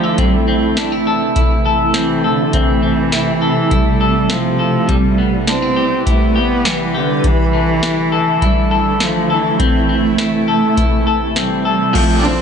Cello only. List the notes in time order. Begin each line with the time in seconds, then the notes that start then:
Already playing: F3
0.21 G3
0.50 A3
1.97 E3
2.27 D3
2.56 E3
3.73 G3
4.32 F3
4.91 G3
5.49 C4
6.09 A3
6.38 B3
6.67 E3
6.97 D3
7.26 E3
8.44 G3
9.03 F3
9.33 E3
9.62 A3
11.38 G3
11.97 A3
12.19 D4
12.26 C4